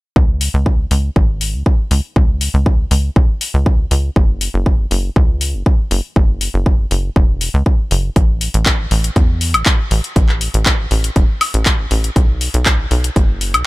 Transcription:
0.16 analog synth bass C#2, kick
0.41 open hi-hat
0.54 analog synth bass C#2
0.66 kick
0.91 analog synth bass C#2, open hi-hat
1.16 analog synth bass G#1, kick
1.41 open hi-hat
1.54 analog synth bass C#2
1.66 kick
1.91 analog synth bass C#2, open hi-hat
2.16 analog synth bass C#2, kick
2.41 open hi-hat
2.54 analog synth bass C#2
2.66 kick
2.91 analog synth bass C#2, open hi-hat
3.16 analog synth bass B1, kick
3.41 open hi-hat
3.54 analog synth bass C#2
3.66 kick
3.91 analog synth bass C#2, open hi-hat
4.16 analog synth bass F#1, kick
4.41 open hi-hat
4.54 analog synth bass F#1
4.66 kick
4.91 analog synth bass F#1, open hi-hat
5.16 analog synth bass C#2, kick
5.41 open hi-hat
5.54 analog synth bass F#1
5.66 kick
5.91 analog synth bass F#1, open hi-hat
6.16 analog synth bass F#1, kick
6.41 open hi-hat
6.54 analog synth bass F#1
6.66 kick
6.91 analog synth bass F#1, open hi-hat
7.16 analog synth bass E1, kick
7.41 open hi-hat
7.54 analog synth bass C#2
7.66 kick
7.91 analog synth bass F#1, open hi-hat
8.16 analog synth bass A1, kick, closed hi-hat
8.41 open hi-hat
8.54 analog synth bass A1, closed hi-hat
8.66 kick, clap, closed hi-hat
8.91 analog synth bass A1, open hi-hat
9.04 closed hi-hat
9.16 analog synth bass E2, kick, closed hi-hat
9.41 open hi-hat
9.54 analog synth bass A1, closed hi-hat, high woodblock
9.66 kick, clap, closed hi-hat
9.91 analog synth bass A1, open hi-hat
10.04 closed hi-hat
10.16 analog synth bass A1, kick, closed hi-hat
10.29 clap
10.41 open hi-hat
10.54 analog synth bass A1, closed hi-hat
10.66 kick, clap, closed hi-hat
10.91 analog synth bass A1, open hi-hat
11.04 closed hi-hat
11.16 analog synth bass E1, kick, closed hi-hat
11.41 open hi-hat, high woodblock
11.54 analog synth bass A1, closed hi-hat
11.66 kick, clap, closed hi-hat
11.91 analog synth bass A1, open hi-hat
12.04 closed hi-hat
12.16 analog synth bass B1, kick, closed hi-hat
12.41 open hi-hat
12.54 analog synth bass B1, closed hi-hat
12.66 kick, clap, closed hi-hat
12.91 analog synth bass B1, open hi-hat
13.04 closed hi-hat
13.16 analog synth bass F#1, kick, closed hi-hat
13.41 open hi-hat
13.54 analog synth bass B1, closed hi-hat, high woodblock

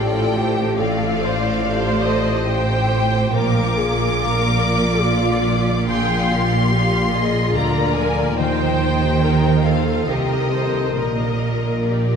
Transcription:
Already playing: double bass section A1, harp A2 F3 A3 C4 F4 G4 C5, cello section A2, viola section F4, violin section A4 D5 G5
0.15 harp C4
0.36 harp A3, viola section G4, violin section C5
0.57 harp C4
0.79 harp A2, violin section F4 D5 F5, viola section A4
1.00 harp A3
1.20 harp C4, viola section C5
1.42 harp F4
1.62 harp G4, violin section A4, viola section C5
1.84 harp C5
2.05 harp G4, violin section D#5
2.28 harp C5
2.48 harp F4, violin section G4 C5 G5, viola section C5
2.71 harp C4
2.92 harp A3, violin section C5
3.14 harp C4
3.35 double bass section A#1, cello section A#2, harp A#2, violin section F4 A#4 D6, viola section A#4
3.58 harp F3
3.79 harp A#3, viola section G#4
4.00 harp F4
4.20 harp G#3, violin section A#4, viola section A#4
4.62 violin section D5
5.04 viola section F4, harp F4, violin section F4
5.26 harp A#3
5.47 harp F3
5.67 harp A#3
5.88 harp A#2, violin section G#4 F5 C6, viola section G5
6.10 harp F3
6.30 harp A#3, viola section F4, violin section G4
6.52 harp F4
6.72 violin section F4 F5, viola section G4, harp G#4
7.14 harp G#4, viola section G#4, violin section D#5
7.55 double bass section D2, cello section D3, harp F4, viola section A#4, violin section D5 A#5
7.77 harp A#3
7.96 harp F3, violin section G#5
8.18 harp A#3
8.38 double bass section D#2, cello section D#3, harp D#3, violin section D#4 C5 G5, viola section C5
8.79 harp D#4
9.00 harp G4
9.22 violin section D#4, viola section A#4
9.43 harp D#5
9.64 violin section F4 F5, viola section A4
9.87 harp D#5
10.08 double bass section C2, cello section C3, harp G4, violin section G4 A#4 D#5, viola section A#4
10.30 harp D#4
10.52 harp A#3, violin section A4, viola section C5
10.74 harp D#4
10.96 double bass section A#1, harp A#2, cello section A#2, violin section A#4 D#5, viola section A#4
11.20 harp F3
11.42 harp A#3
11.64 harp F4
11.87 viola section G4, harp D5, violin section D5
12.09 harp F4

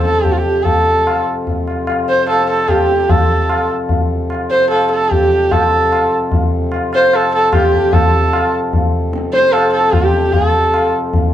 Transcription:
Already playing: harmonium F2 C3 A4
0.04 sarangi A4, tabla te
0.23 sarangi G4, tabla tin, tabla ge
0.32 sarangi F4, harmonium G4
0.38 sarangi G4
0.49 harmonium G4
0.63 harmonium F2 C3, sarangi A4, tabla tin, tabla ge
0.77 harmonium A4
1.07 tabla na
1.47 tabla tin, tabla ge
1.68 tabla na
1.87 tabla na
2.09 sarangi C5
2.18 harmonium C5
2.27 sarangi A4, tabla na
2.37 harmonium A4
2.50 sarangi A4
2.68 sarangi G4, tabla na, tabla ge
2.77 harmonium G4
2.89 tabla te
3.09 sarangi A4, tabla tin, tabla ge
3.20 harmonium A4
3.49 tabla na
3.89 tabla tin, tabla ge
4.30 tabla na
4.51 sarangi C5
4.61 harmonium C5
4.70 sarangi A4, tabla na
4.81 harmonium A4
4.91 sarangi A4
5.01 harmonium A4
5.11 sarangi G4, tabla tin, tabla ge
5.22 harmonium G4
5.51 harmonium F2 C3, sarangi A4, tabla tin, tabla ge
5.61 harmonium A4
5.92 tabla na
6.32 tabla tin, tabla ge
6.72 tabla na
6.93 sarangi C5, tabla na
7.03 harmonium C5
7.13 sarangi A4, harmonium C5, tabla na
7.22 harmonium A4
7.35 sarangi A4
7.53 sarangi G4, tabla na, tabla ge
7.64 harmonium G4
7.73 tabla ge
7.93 sarangi A4, tabla tin, tabla ge
8.05 harmonium A4
8.33 tabla na
8.73 tabla tin, tabla ge
9.13 tabla te
9.33 sarangi C5, tabla te
9.43 harmonium C5
9.52 sarangi A4, tabla na
9.64 harmonium A4
9.71 sarangi A4, harmonium C5
9.78 harmonium A4
9.93 sarangi G4, tabla na, tabla ge
10.04 harmonium G4
10.14 tabla te
10.33 harmonium F2 C3, sarangi G#4, tabla tin, tabla ge
10.44 harmonium A4, sarangi A4
10.74 tabla na
11.13 tabla tin, tabla ge

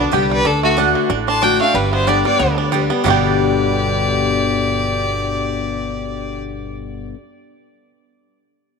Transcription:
Already playing: steel-string acoustic guitar D3, five-string banjo B3, fiddle F#4
0.00 fiddle D4, five-string banjo D4
0.12 upright bass C2, steel-string acoustic guitar D3 G3 B3 G4, mandolin B3 G4 D5 G5, five-string banjo G4, fiddle G4 B4
0.30 five-string banjo G3, fiddle B4 D5
0.44 upright bass D2, steel-string acoustic guitar D3, five-string banjo D4, fiddle A4 D5
0.63 five-string banjo A3, fiddle F#4 A4
0.77 steel-string acoustic guitar D3 A3 D4 F#4, mandolin A3 F#4 D5 F#5, five-string banjo D4
0.95 five-string banjo D3
1.09 upright bass A1, steel-string acoustic guitar A2, five-string banjo D4
1.28 five-string banjo D4, fiddle A5 C6
1.42 steel-string acoustic guitar D3 A3 D4 F#4, mandolin A3 F#4 D5 F#5, five-string banjo D4, fiddle G5 D6
1.60 five-string banjo A3, steel-string acoustic guitar D4 F#4, fiddle F5 G5
1.74 upright bass G1, steel-string acoustic guitar G2, five-string banjo G3, fiddle B4 D5
1.92 five-string banjo B3, fiddle C5 E5
2.06 steel-string acoustic guitar D3 G3 B3 G4, mandolin B3 G4 D5 G5, five-string banjo D4, fiddle D5 G5
2.25 five-string banjo G3, steel-string acoustic guitar B3 G4, fiddle D5 G5
2.39 upright bass D2, steel-string acoustic guitar D3, five-string banjo B3
2.58 five-string banjo D4
2.71 steel-string acoustic guitar D3 G3 B3 G4, five-string banjo G3, mandolin B3 G4 D5 G5
2.90 five-string banjo B3, steel-string acoustic guitar B3 G4
3.04 upright bass G1, steel-string acoustic guitar G2 B2 D3 G3 B3 G4, five-string banjo G3 B3, mandolin B3 G4 D5 G5, fiddle G4 D5
3.08 five-string banjo D4 G4

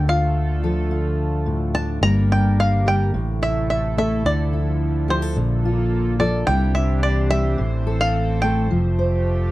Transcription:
Already playing: fingered electric bass D2, analog synth pad D3 A3 F4 A4, steel-string acoustic guitar D3
0.08 steel-string acoustic guitar F4, five-string banjo F5
0.63 steel-string acoustic guitar F3 A4
0.91 steel-string acoustic guitar F4
1.46 steel-string acoustic guitar A2
1.74 steel-string acoustic guitar D4, five-string banjo A5
2.01 fingered electric bass G1, steel-string acoustic guitar G2 G3 A#3 D4, analog synth pad D3 A#3 G4 A#4, five-string banjo A#5
2.05 steel-string acoustic guitar A#4
2.32 steel-string acoustic guitar D4, five-string banjo G5
2.60 five-string banjo F5
2.86 steel-string acoustic guitar G3 A#4, five-string banjo G5
3.13 fingered electric bass A1, steel-string acoustic guitar A2, analog synth pad C3 A3 E4 A4
3.42 steel-string acoustic guitar E4, five-string banjo E5
3.70 five-string banjo E5
3.97 steel-string acoustic guitar A3 A4, five-string banjo E5
4.25 fingered electric bass D2, steel-string acoustic guitar D3, analog synth pad D3 F3, five-string banjo D5
4.53 steel-string acoustic guitar E4
5.08 steel-string acoustic guitar F3 G4, five-string banjo C5
5.22 steel-string acoustic guitar A4
5.35 fingered electric bass A#1, steel-string acoustic guitar A#2, analog synth pad A#3 F4 A4
5.65 steel-string acoustic guitar F4
6.19 steel-string acoustic guitar F3 A4, five-string banjo D5
6.47 fingered electric bass C2, steel-string acoustic guitar C3 G3 D4 E4 G4, analog synth pad E3 D4 G4 C5, five-string banjo G5
6.75 steel-string acoustic guitar E4, five-string banjo E5
7.03 five-string banjo D5
7.31 steel-string acoustic guitar G3 G4, five-string banjo E5
7.58 fingered electric bass A1, steel-string acoustic guitar A2, analog synth pad C4 A4
7.87 steel-string acoustic guitar A4
8.01 five-string banjo F5
8.42 steel-string acoustic guitar A3 A4, five-string banjo G5
8.71 fingered electric bass F1, analog synth pad F3 A3 G4, steel-string acoustic guitar F3
8.99 steel-string acoustic guitar C5

